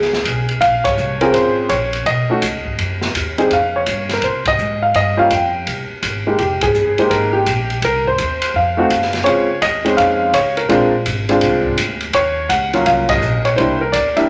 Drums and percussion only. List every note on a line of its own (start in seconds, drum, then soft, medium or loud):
0.02 snare soft
0.13 snare soft
0.25 kick soft
0.25 hi-hat pedal medium
0.25 ride medium
0.49 ride soft
0.61 kick soft
0.61 ride medium
0.85 kick medium
0.85 ride medium
0.98 hi-hat pedal medium
1.21 ride soft
1.33 kick soft
1.33 ride medium
1.69 kick soft
1.69 hi-hat pedal soft
1.69 ride medium
1.93 ride soft
2.06 kick soft
2.06 ride medium
2.42 kick soft
2.42 hi-hat pedal medium
2.42 ride medium
2.65 kick soft
2.78 kick soft
2.78 ride medium
3.02 snare soft
3.14 kick soft
3.14 hi-hat pedal medium
3.14 ride medium
3.38 ride soft
3.50 kick soft
3.50 ride medium
3.86 kick soft
3.86 hi-hat pedal medium
3.86 ride medium
4.09 snare soft
4.09 ride soft
4.22 kick soft
4.22 ride medium
4.45 kick medium
4.45 ride medium
4.58 hi-hat pedal medium
4.94 kick soft
4.94 ride medium
5.30 kick soft
5.30 hi-hat pedal medium
5.30 ride medium
5.67 kick soft
5.67 ride medium
6.02 kick soft
6.02 hi-hat pedal medium
6.02 ride medium
6.38 kick soft
6.38 ride medium
6.61 kick medium
6.61 ride medium
6.74 hi-hat pedal medium
6.98 ride soft
7.10 kick soft
7.10 ride medium
7.46 kick soft
7.46 hi-hat pedal medium
7.46 ride medium
7.70 ride soft
7.82 kick soft
7.82 ride medium
8.05 kick soft
8.18 kick soft
8.18 hi-hat pedal medium
8.18 ride medium
8.42 ride medium
8.54 kick soft
8.90 kick soft
8.90 hi-hat pedal medium
8.90 ride medium
9.02 snare soft
9.13 snare soft
9.13 ride soft
9.26 kick soft
9.26 ride medium
9.62 kick soft
9.62 hi-hat pedal medium
9.62 ride medium
9.86 ride soft
9.98 kick soft
9.98 ride medium
10.33 kick soft
10.33 hi-hat pedal medium
10.33 ride medium
10.57 ride soft
10.69 kick soft
10.69 ride medium
11.05 kick soft
11.05 hi-hat pedal medium
11.05 ride medium
11.29 ride soft
11.41 kick soft
11.41 ride medium
11.64 kick soft
11.77 kick soft
11.77 hi-hat pedal medium
11.77 ride medium
12.01 ride soft
12.13 kick soft
12.13 ride medium
12.49 kick soft
12.49 hi-hat pedal soft
12.49 ride medium
12.73 ride soft
12.85 kick soft
12.85 ride medium
13.08 kick medium
13.08 ride medium
13.22 hi-hat pedal medium
13.45 ride soft
13.57 kick soft
13.57 ride medium
13.93 kick soft
13.93 hi-hat pedal medium
13.93 ride medium
14.17 ride soft